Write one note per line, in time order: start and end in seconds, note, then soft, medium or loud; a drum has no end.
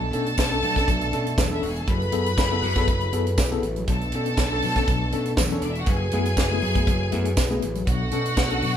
0.00 1.85 A3 medium
0.00 1.85 B3 medium
0.00 1.86 D4 medium
0.00 0.06 D4 soft
0.00 1.47 A4 loud
0.00 0.06 A4 soft
0.00 1.47 A5 loud
0.12 0.32 B2 loud
0.12 0.27 C#4 medium
0.12 0.27 D4 medium
0.12 0.27 A4 medium
0.12 closed hi-hat medium
0.26 closed hi-hat soft
0.38 0.57 B1 loud
0.38 kick loud
0.38 snare loud
0.38 tambourine medium
0.51 0.63 C#4 medium
0.51 0.63 D4 medium
0.51 0.64 A4 medium
0.51 closed hi-hat soft
0.62 0.82 B2 loud
0.62 0.77 B2 medium
0.62 0.77 F#3 medium
0.62 open hi-hat medium
0.76 0.89 C#4 medium
0.76 0.89 D4 medium
0.76 0.89 A4 medium
0.76 kick medium
0.76 snare soft
0.76 closed hi-hat soft
0.88 1.07 B1 loud
0.88 1.02 B2 medium
0.88 1.02 F#3 medium
0.88 kick loud
0.88 closed hi-hat medium
1.01 closed hi-hat soft
1.13 1.32 B2 loud
1.13 1.26 C#4 medium
1.13 1.25 D4 medium
1.13 1.25 A4 medium
1.13 closed hi-hat medium
1.27 1.31 D4 soft
1.27 1.31 A4 soft
1.27 closed hi-hat medium
1.38 1.57 E2 loud
1.38 1.51 B2 medium
1.38 1.51 F#3 medium
1.38 kick loud
1.38 snare loud
1.38 tambourine loud
1.51 1.63 C#4 medium
1.51 1.62 D4 medium
1.51 1.63 E4 medium
1.51 1.62 A4 medium
1.51 1.63 E5 medium
1.62 1.82 E1 medium
1.62 1.68 D4 soft
1.62 1.71 F#4 medium
1.62 1.68 A4 soft
1.62 1.71 F#5 medium
1.62 open hi-hat medium
1.71 1.79 G#4 medium
1.71 1.79 G#5 medium
1.76 1.88 A4 medium
1.76 1.88 A5 medium
1.76 closed hi-hat soft
1.87 2.07 F#1 loud
1.87 3.85 F#3 medium
1.87 2.02 F#3 medium
1.87 3.85 E4 medium
1.87 3.86 G#4 medium
1.87 3.85 A4 medium
1.87 3.85 B4 medium
1.87 3.60 B4 loud
1.87 3.60 B5 loud
1.87 kick loud
1.87 closed hi-hat medium
2.02 2.06 G#4 soft
2.02 2.06 A4 soft
2.02 closed hi-hat soft
2.12 2.32 F#2 medium
2.12 2.26 B3 medium
2.12 2.26 E4 medium
2.12 2.26 G#4 medium
2.12 2.26 A4 medium
2.12 closed hi-hat medium
2.26 closed hi-hat medium
2.38 2.57 F#1 loud
2.38 kick loud
2.38 snare loud
2.38 tambourine medium
2.51 2.63 B3 medium
2.51 2.63 E4 medium
2.51 2.63 G#4 medium
2.51 2.64 A4 medium
2.62 2.82 F#2 loud
2.62 2.77 F#3 medium
2.62 open hi-hat medium
2.76 2.88 B3 medium
2.76 2.88 E4 medium
2.76 2.88 G#4 medium
2.76 2.88 A4 medium
2.76 kick medium
2.76 snare soft
2.76 closed hi-hat soft
2.88 3.08 F#1 loud
2.88 3.02 F#3 medium
2.88 kick loud
2.88 closed hi-hat medium
3.01 closed hi-hat soft
3.13 3.32 F#2 medium
3.13 3.26 B3 medium
3.13 3.26 E4 medium
3.13 3.25 G#4 medium
3.13 3.26 A4 medium
3.13 closed hi-hat medium
3.26 3.31 G#4 soft
3.26 3.31 A4 soft
3.26 closed hi-hat medium
3.38 3.57 B1 medium
3.38 kick loud
3.38 snare loud
3.38 tambourine loud
3.52 3.64 B3 medium
3.52 3.64 E4 medium
3.52 3.63 G#4 medium
3.52 3.64 A4 medium
3.52 closed hi-hat soft
3.63 3.82 A1 loud
3.63 closed hi-hat medium
3.76 3.87 F#3 medium
3.76 closed hi-hat soft
3.87 4.07 B1 loud
3.87 4.02 B2 medium
3.87 4.02 F#3 medium
3.87 5.85 A3 medium
3.87 5.85 B3 medium
3.87 5.85 D4 medium
3.87 5.31 A4 loud
3.87 5.31 A5 loud
3.87 kick loud
3.87 closed hi-hat medium
4.01 4.06 D4 soft
4.01 4.07 A4 soft
4.01 closed hi-hat soft
4.12 4.33 B2 loud
4.12 4.27 C#4 medium
4.12 4.27 D4 medium
4.12 4.28 A4 medium
4.12 closed hi-hat medium
4.26 closed hi-hat soft
4.37 4.57 B1 loud
4.37 kick loud
4.37 snare loud
4.37 tambourine medium
4.52 4.64 C#4 medium
4.52 4.64 D4 medium
4.52 4.64 A4 medium
4.62 4.83 B2 loud
4.62 4.77 B2 medium
4.62 4.77 F#3 medium
4.62 open hi-hat medium
4.76 4.88 C#4 medium
4.76 4.89 D4 medium
4.76 4.88 A4 medium
4.76 kick medium
4.76 snare soft
4.76 closed hi-hat soft
4.88 5.07 B1 loud
4.88 5.02 B2 medium
4.88 5.02 F#3 medium
4.88 kick loud
4.88 closed hi-hat medium
5.12 5.32 B2 loud
5.12 5.26 C#4 medium
5.12 5.26 D4 medium
5.12 5.26 A4 medium
5.12 closed hi-hat medium
5.26 5.31 D4 soft
5.26 5.31 A4 soft
5.26 closed hi-hat medium
5.37 5.57 E2 loud
5.37 5.52 B2 medium
5.37 5.52 F#3 medium
5.37 5.46 A3 medium
5.37 5.46 A4 medium
5.37 kick loud
5.37 snare loud
5.37 tambourine loud
5.45 5.54 B3 medium
5.45 5.54 B4 medium
5.50 5.64 C#4 medium
5.50 5.62 C#4 medium
5.50 5.63 D4 medium
5.50 5.63 A4 medium
5.50 5.62 C#5 medium
5.50 closed hi-hat soft
5.62 5.82 E1 medium
5.62 5.71 D4 medium
5.62 5.69 D4 soft
5.62 5.69 A4 soft
5.62 5.71 D5 medium
5.62 closed hi-hat medium
5.70 5.79 E4 medium
5.70 5.79 E5 medium
5.75 5.87 F#4 medium
5.75 5.87 F#5 loud
5.75 closed hi-hat soft
5.86 6.07 F#1 loud
5.86 7.85 F#3 medium
5.86 6.02 F#3 medium
5.86 7.85 A3 medium
5.86 7.85 E4 medium
5.86 7.85 G#4 medium
5.86 7.59 G#4 medium
5.86 7.85 B4 medium
5.86 7.59 G#5 loud
5.86 kick loud
5.86 closed hi-hat medium
6.01 6.06 E4 soft
6.01 6.06 G#4 soft
6.11 6.32 F#2 loud
6.11 6.27 A3 medium
6.11 6.27 B3 medium
6.11 6.27 E4 medium
6.11 6.27 G#4 medium
6.11 closed hi-hat medium
6.25 closed hi-hat medium
6.37 6.57 F#1 loud
6.37 kick loud
6.37 snare loud
6.37 tambourine medium
6.52 6.63 A3 medium
6.52 6.63 B3 medium
6.52 6.64 E4 medium
6.52 6.64 G#4 medium
6.61 6.82 F#2 loud
6.61 6.76 F#3 medium
6.61 open hi-hat medium
6.75 6.88 A3 medium
6.75 6.88 B3 medium
6.75 6.88 E4 medium
6.75 6.88 G#4 medium
6.75 kick loud
6.75 closed hi-hat medium
6.87 7.07 F#1 loud
6.87 7.01 F#3 medium
6.87 kick loud
6.87 closed hi-hat medium
7.12 7.32 F#2 loud
7.12 7.26 A3 medium
7.12 7.26 B3 medium
7.12 7.25 E4 medium
7.12 7.25 G#4 medium
7.12 closed hi-hat medium
7.25 7.31 E4 soft
7.25 7.31 G#4 soft
7.25 closed hi-hat medium
7.37 7.57 B1 loud
7.37 kick loud
7.37 snare loud
7.37 tambourine loud
7.50 7.63 A3 medium
7.50 7.63 B3 medium
7.50 7.63 E4 medium
7.50 7.63 G#4 medium
7.50 closed hi-hat soft
7.62 7.82 A1 loud
7.62 closed hi-hat medium
7.75 7.86 F#3 medium
7.75 closed hi-hat soft
7.86 8.07 B1 loud
7.86 8.01 B2 medium
7.86 8.01 F#3 medium
7.86 8.77 A3 medium
7.86 8.77 B3 medium
7.86 8.77 D4 medium
7.86 8.77 F#4 loud
7.86 8.77 F#5 loud
7.86 kick loud
7.86 closed hi-hat medium
8.01 8.06 D4 soft
8.01 8.06 A4 soft
8.11 8.32 B2 loud
8.11 8.26 C#4 medium
8.11 8.26 D4 medium
8.11 8.26 A4 medium
8.11 closed hi-hat medium
8.26 closed hi-hat medium
8.37 8.57 B1 loud
8.37 kick loud
8.37 snare loud
8.37 tambourine medium
8.50 8.63 C#4 medium
8.50 8.63 D4 medium
8.50 8.63 A4 medium
8.50 closed hi-hat soft
8.62 8.76 B2 medium
8.62 8.77 B2 loud
8.62 8.76 F#3 medium
8.62 open hi-hat medium